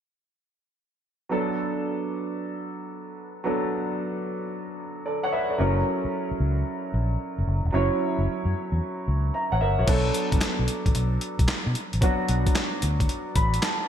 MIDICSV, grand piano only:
0, 0, Header, 1, 2, 480
1, 0, Start_track
1, 0, Key_signature, 2, "minor"
1, 0, Tempo, 535714
1, 1170, Time_signature, 4, 2, 24, 8
1, 12436, End_track
2, 0, Start_track
2, 0, Title_t, "Grand piano"
2, 0, Program_c, 0, 0
2, 1159, Note_on_c, 0, 54, 69
2, 1167, Note_on_c, 0, 59, 60
2, 1174, Note_on_c, 0, 62, 57
2, 1181, Note_on_c, 0, 69, 77
2, 1344, Control_c, 0, 64, 127
2, 3049, Note_off_c, 0, 54, 0
2, 3052, Note_off_c, 0, 59, 0
2, 3056, Note_off_c, 0, 62, 0
2, 3059, Note_off_c, 0, 69, 0
2, 3080, Note_on_c, 0, 54, 72
2, 3088, Note_on_c, 0, 59, 65
2, 3095, Note_on_c, 0, 62, 65
2, 3102, Note_on_c, 0, 69, 71
2, 4507, Note_off_c, 0, 69, 0
2, 4531, Note_on_c, 0, 74, 58
2, 4536, Note_on_c, 0, 69, 50
2, 4682, Note_off_c, 0, 74, 0
2, 4685, Note_off_c, 0, 69, 0
2, 4690, Note_on_c, 0, 78, 73
2, 4696, Note_on_c, 0, 73, 62
2, 4766, Note_off_c, 0, 78, 0
2, 4769, Note_off_c, 0, 73, 0
2, 4771, Note_on_c, 0, 76, 73
2, 4776, Note_on_c, 0, 71, 61
2, 4923, Note_off_c, 0, 76, 0
2, 4925, Note_off_c, 0, 71, 0
2, 4930, Note_on_c, 0, 74, 56
2, 4936, Note_on_c, 0, 69, 45
2, 4969, Note_off_c, 0, 54, 0
2, 4973, Note_off_c, 0, 59, 0
2, 4976, Note_off_c, 0, 62, 0
2, 5000, Note_on_c, 0, 54, 76
2, 5007, Note_on_c, 0, 61, 65
2, 5014, Note_on_c, 0, 64, 59
2, 5020, Control_c, 0, 64, 0
2, 5021, Note_on_c, 0, 70, 73
2, 5158, Note_off_c, 0, 74, 0
2, 5161, Note_off_c, 0, 69, 0
2, 5162, Control_c, 0, 64, 127
2, 6889, Note_off_c, 0, 54, 0
2, 6893, Note_off_c, 0, 61, 0
2, 6896, Note_off_c, 0, 64, 0
2, 6900, Note_off_c, 0, 70, 0
2, 6920, Note_on_c, 0, 54, 72
2, 6927, Note_on_c, 0, 61, 60
2, 6934, Note_on_c, 0, 64, 67
2, 6941, Note_on_c, 0, 73, 80
2, 8347, Note_off_c, 0, 73, 0
2, 8370, Note_on_c, 0, 82, 57
2, 8375, Note_on_c, 0, 76, 51
2, 8522, Note_off_c, 0, 82, 0
2, 8525, Note_off_c, 0, 76, 0
2, 8529, Note_on_c, 0, 78, 67
2, 8535, Note_on_c, 0, 73, 56
2, 8605, Note_off_c, 0, 78, 0
2, 8608, Note_off_c, 0, 73, 0
2, 8609, Note_on_c, 0, 76, 71
2, 8615, Note_on_c, 0, 70, 61
2, 8762, Note_off_c, 0, 76, 0
2, 8765, Note_off_c, 0, 70, 0
2, 8770, Note_on_c, 0, 73, 63
2, 8775, Note_on_c, 0, 66, 50
2, 8809, Note_off_c, 0, 54, 0
2, 8813, Note_off_c, 0, 61, 0
2, 8816, Note_off_c, 0, 64, 0
2, 8838, Note_on_c, 0, 54, 65
2, 8845, Note_on_c, 0, 59, 64
2, 8852, Note_on_c, 0, 62, 66
2, 8859, Note_on_c, 0, 69, 77
2, 8861, Control_c, 0, 64, 0
2, 8998, Note_off_c, 0, 73, 0
2, 9001, Note_off_c, 0, 66, 0
2, 9045, Control_c, 0, 64, 127
2, 10728, Note_off_c, 0, 54, 0
2, 10732, Note_off_c, 0, 59, 0
2, 10735, Note_off_c, 0, 62, 0
2, 10739, Note_off_c, 0, 69, 0
2, 10761, Note_on_c, 0, 54, 77
2, 10767, Note_on_c, 0, 59, 61
2, 10774, Note_on_c, 0, 62, 64
2, 10782, Note_on_c, 0, 66, 77
2, 11970, Note_on_c, 0, 83, 71
2, 12193, Note_off_c, 0, 83, 0
2, 12208, Note_on_c, 0, 81, 64
2, 12432, Note_off_c, 0, 81, 0
2, 12436, Note_off_c, 0, 54, 0
2, 12436, Note_off_c, 0, 59, 0
2, 12436, Note_off_c, 0, 62, 0
2, 12436, Note_off_c, 0, 66, 0
2, 12436, End_track
0, 0, End_of_file